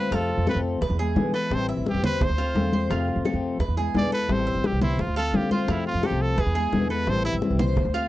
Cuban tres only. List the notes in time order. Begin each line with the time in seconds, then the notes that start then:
Already playing: C5
0.12 F4
0.47 A4
0.82 B4
0.99 G#4
1.34 A4
1.69 E5
2.04 C5
2.38 F4
2.73 C5
2.91 F4
3.25 A4
3.60 B4
3.77 G#4
4.12 A4
4.47 E5
4.82 C5
5.16 F4
5.51 C5
5.68 F4
6.03 A4
6.38 B4
6.55 G#4
6.90 A4
7.25 E5
7.59 C5
7.94 F4